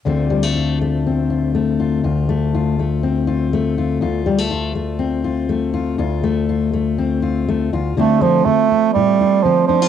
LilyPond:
<<
  \new Staff \with { instrumentName = "Steel-string acoustic guitar" } { \time 4/4 \key d \minor \tempo 4 = 121 << { <d a c' f'>8 g16 a16 f'8 a8 c'8 f'8 a8 f'8 | f'8 a8 f'8 a8 c'8 f'8 a8 f'8 | f'8 g16 a16 f'8 a8 c'8 f'8 a8 f'8 | f'8 a8 f'8 a8 c'8 f'8 a8 f'8 |
<d a c' f'>8 a4 c'4 f'8 c'8 d'16 f'16 | } \\ { d,1 | d,1 | d,1 | d,2.~ d,8 d,8 |
d,4 d4 a,4 d4 | } >> }
  \new Staff \with { instrumentName = "Bass clarinet" } { \clef bass \time 4/4 \key d \minor r1 | r1 | r1 | r1 |
a8 f8 a4 g4 f8 f8 | }
>>